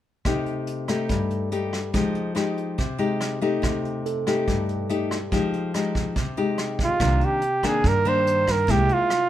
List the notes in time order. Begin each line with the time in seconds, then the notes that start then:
0.25 C3 A3 D#4 G4, kick, cross-stick, closed hi-hat
0.46 closed hi-hat
0.67 closed hi-hat
0.88 A3 D#4 G4, cross-stick, closed hi-hat
1.09 G2, kick, closed hi-hat
1.30 closed hi-hat
1.52 A3 D#4 G4, closed hi-hat
1.73 cross-stick, closed hi-hat
1.94 F3 G#3 D#4 G4, kick, closed hi-hat
2.15 closed hi-hat
2.35 G#3 D#4 G4, cross-stick, closed hi-hat
2.57 closed hi-hat
2.78 C3, kick, closed hi-hat
2.98 G#3 D#4 G4, closed hi-hat
3.21 cross-stick, closed hi-hat
3.42 A3 D#4 G4, closed hi-hat
3.62 C3, kick, cross-stick, closed hi-hat
3.85 closed hi-hat
4.06 A4, closed hi-hat
4.27 A3 D#4 G4, cross-stick, closed hi-hat
4.48 G2, kick, closed hi-hat
4.69 closed hi-hat
4.89 A3 D#4 G4, closed hi-hat
5.11 cross-stick, closed hi-hat
5.32 F3 G#3 D#4 G4, kick, closed hi-hat
5.53 closed hi-hat
5.74 G#3 D#4 G4, cross-stick, closed hi-hat
5.95 kick, closed hi-hat
6.16 C3, kick, closed hi-hat
6.37 G#3 D#4 G4, closed hi-hat
6.58 cross-stick, closed hi-hat
6.79 kick, closed hi-hat
6.84 F4
7.00 C2 C3 D#3 A#3 D4, kick, cross-stick, closed hi-hat
7.21 closed hi-hat
7.25 G4
7.42 closed hi-hat
7.63 D#3 A#3 D4, kick, cross-stick, closed hi-hat
7.67 G#4
7.84 G2 A#4, kick, closed hi-hat
8.05 D#3 A#3 D4 C5, closed hi-hat
8.27 closed hi-hat
8.47 A#4, kick, cross-stick, closed hi-hat
8.68 C2 C3 G#3 A#3 E4 G4, kick, closed hi-hat
8.89 F4, closed hi-hat
9.10 cross-stick, closed hi-hat